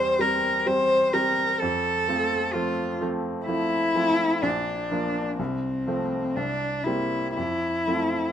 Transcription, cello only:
0.00 0.22 C5 medium
0.21 0.69 A#4 medium
0.67 1.15 C5 medium
1.14 1.61 A#4 medium
1.59 2.55 A4 medium
2.53 3.00 F4 medium
3.45 4.44 E4 medium
4.43 5.38 D4 medium
5.38 6.38 C4 medium
6.36 6.85 D4 medium
6.84 7.34 E4 medium
7.34 8.32 E4 medium

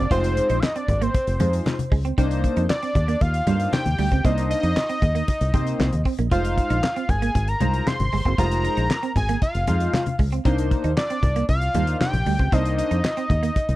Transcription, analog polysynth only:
0.10 0.57 G#3 medium
0.10 0.58 D#4 medium
0.10 0.58 F4 medium
0.10 0.58 C5 medium
1.40 1.75 G#3 medium
1.40 1.75 D#4 medium
1.40 1.75 F4 medium
1.40 1.76 C5 medium
2.18 2.64 A#3 loud
2.18 2.65 D4 loud
2.18 2.65 D#4 loud
2.18 2.65 C5 loud
3.47 3.82 A#3 medium
3.47 3.82 D4 medium
3.47 3.82 D#4 medium
3.47 3.82 C5 medium
4.24 4.71 A#3 medium
4.24 4.71 D4 medium
4.24 4.71 D#4 medium
4.24 4.72 C5 medium
5.54 5.89 A#3 medium
5.54 5.89 C4 medium
5.54 5.89 D#4 medium
5.54 5.89 C5 medium
6.31 6.78 G#3 medium
6.31 6.78 D#4 medium
6.31 6.78 F4 medium
6.31 6.79 C5 loud
7.61 7.96 G#3 medium
7.61 7.96 D#4 medium
7.61 7.96 F4 medium
7.61 7.96 C5 medium
8.38 8.45 G3 medium
8.38 8.85 D#4 medium
8.38 8.85 F4 medium
8.38 8.85 C5 loud
8.44 8.88 G#3 medium
9.67 10.03 G#3 medium
9.67 10.03 D#4 medium
9.67 10.03 F4 medium
9.67 10.03 C5 medium
10.45 10.92 A#3 loud
10.45 10.92 D4 medium
10.45 10.92 D#4 medium
10.45 10.92 C5 loud
11.74 12.10 A#3 medium
11.74 12.10 D4 medium
11.74 12.10 D#4 medium
11.74 12.10 C5 medium
12.52 12.99 A#3 medium
12.52 12.99 D4 medium
12.52 12.99 D#4 medium
12.52 12.99 C5 medium

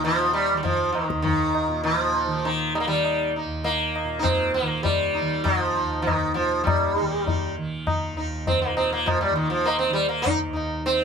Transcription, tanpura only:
0.00 1.12 D#2 medium
0.00 1.68 A#2 medium
0.00 0.54 D#3 medium
0.54 2.27 D#3 medium
1.12 3.45 D#2 medium
1.68 4.04 A#2 medium
2.27 2.87 D#3 medium
2.87 4.61 D#3 medium
3.45 5.80 D#2 medium
4.05 6.40 A#2 medium
4.61 5.21 D#3 medium
5.21 7.00 D#3 medium
5.81 8.14 D#2 soft
6.40 8.71 A#2 medium
7.00 7.58 D#3 medium
7.58 9.31 D#3 medium
8.14 10.46 D#2 medium
8.71 11.04 A#2 medium
9.31 9.89 D#3 medium
9.89 11.04 D#3 medium
10.47 11.04 D#2 medium

